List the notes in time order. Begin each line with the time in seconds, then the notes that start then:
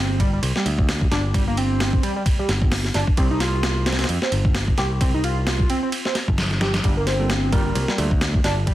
Already playing: G1 C4
0.20 G3, kick, ride
0.33 G3
0.43 C2, ride
0.56 G3, snare
0.66 D2, ride
0.79 kick
0.89 snare, ride
1.01 kick
1.11 G1 D4, snare, ride
1.34 G3, kick, ride
1.47 A#3
1.57 C4, ride
1.80 snare, ride
1.93 kick
2.03 G3, ride
2.16 G3
2.26 kick, ride
2.39 G3
2.49 G1, snare, ride
2.62 kick
2.72 snare, open hi-hat
2.85 snare
2.94 G1 D4, snare, ride
3.07 kick
3.17 C2 C4, kick, ride
3.31 D#4
3.40 F4, snare, ride
3.63 snare, ride
3.86 C4, snare, ride
3.92 snare, ride
3.99 C4, snare, ride
4.04 snare, ride
4.09 F2, ride
4.22 C4, snare
4.32 G1, ride
4.45 kick
4.55 snare, ride
4.68 kick
4.78 C2 G4, snare, ride
5.01 C4, kick, ride
5.14 D#4
5.24 F4, ride
5.47 snare, ride
5.60 kick
5.70 C4, ride
5.83 C4
5.92 ride
6.05 C4, snare
6.15 snare, ride
6.28 G1, kick
6.38 snare, open hi-hat
6.51 snare
6.61 G4, snare, ride
6.74 snare, ride
6.84 G1 G3, kick, ride
6.97 A#3
7.07 C4, snare, ride
7.20 G3 A#3 F4 A4
7.30 snare, ride
7.52 G3 A#3 F4 A#4, kick, ride
7.66 G3
7.75 C2, ride
7.88 G3, snare
7.98 D2 G3 A#3 F4 A4, ride
8.11 kick
8.21 snare, ride
8.34 kick
8.44 G1 D4, snare, ride
8.67 G3, kick, ride